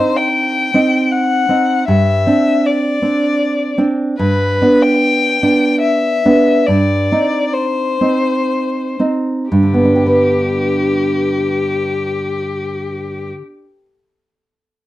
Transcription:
Already playing: C4 D#4 C5
0.17 G5
0.74 C4 D#4
1.11 F#5
1.49 C4 D#4
1.88 G2 E5
2.27 C4 D4
2.66 D5
3.02 C4 D4
3.78 C4 D4
4.19 G2 B4
4.62 B3 D4
4.82 G5
5.43 B3 D4
5.82 E5
6.26 B3 D4
6.66 G2 D5
7.12 C4 D#4
7.53 C5
8.01 C4 D#4
9.00 C4 D#4
9.51 G2 G4
9.63 D3
9.74 B3
9.85 D4
9.96 G4
10.06 B4

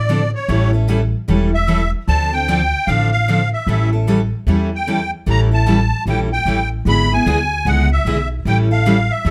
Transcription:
Already playing: A1 D5
0.09 D3 F3 C4 D4 A4
0.35 C#5
0.48 A1 E3 G3 C#4 E4 A4
0.73 C#4 E4 A4
0.88 E3 G3 C#4 E4 A4
1.28 E1 E3 G3 C#4 E4 A4
1.54 E5
1.67 E3 G3 C#4 E4 A4
2.08 D2 D3 F3 C4 D4 A4 A5
2.33 C4 D4 A4 G5
2.48 D3 F3 C4 D4 A4
2.87 A1 D3 F3 C4 D4 A4 F5
3.12 F5
3.28 D3 F3 C4 D4 A4
3.53 E5
3.67 A1 E3 G3 C#4 E4 A4
3.93 C#4 E4 A4
4.08 E3 G3 C#4 E4 A4
4.47 E2 E3 G3 C#4 E4 A4
4.75 G5
4.87 E3 G3 C#4 E4 A4
5.26 A1 E3 G3 C#4 E4 A4
5.30 A#5
5.51 C#4 E4 A4 A5
5.66 E3 G3 C#4 E4 A4
6.06 A#1 E3 G3 C#4 E4 A4 G5
6.33 G5
6.45 A1 E3 G3 C#4 E4 A4
6.85 G#1 D3 G#3 B3 E4 G#4 B5
7.11 B3 E4 G#4 G#5
7.26 D2 D3 G#3 B3 E4 G#4
7.65 C#2 D3 G#3 B3 E4 G#4 F#5
7.92 E5
8.05 B1 D3 G#3 B3 E4 G#4
8.45 A1 E3 G3 C#4 E4 A4 G5
8.71 C#4 E4 A4 F5
8.86 E3 G3 C#4 E4 A4
9.11 E5
9.25 E2 E3 G3 C#4 E4 A4

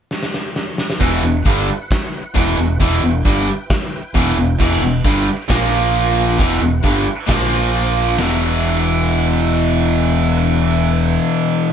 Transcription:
0.11 snare
0.23 snare
0.34 snare
0.56 snare
0.78 snare
0.90 snare
0.99 E1 E2 B2 E3 E4 B4 F#5, kick, open hi-hat
1.23 E1 E2 B2
1.45 G1 G2 D3 G3, kick, open hi-hat
1.91 kick, snare, open hi-hat
2.34 E1 E2 B2 E3, kick, open hi-hat
2.57 E1 E2 B2
2.80 E1 E2 B2 E3 G5, kick, open hi-hat
3.03 E1 E2 B2
3.25 G1 G2 D3 G3, kick, open hi-hat
3.70 kick, snare, open hi-hat
4.14 E1 E2 B2 E3, kick, open hi-hat
4.37 E1 E2 B2
4.60 E1 E2 B2 E3, kick, crash
4.81 E1 E2 B2
5.04 G1 G2 D3 G3, kick, open hi-hat
5.49 A#1 A#2 F3 A#3 F4 C5, kick, snare, open hi-hat
5.95 open hi-hat
6.37 E1 E2 B2 E3 E4 B4 F#5, kick, open hi-hat
6.61 E1 E2 B2
6.83 G1 G2 D3 G3, kick, open hi-hat
7.27 A#1 A#2 F3 A#3 F4 C5, kick, snare, open hi-hat
7.73 open hi-hat
8.16 E1 E2 B2 E4 B4 F#5, snare, ride bell
8.21 E3

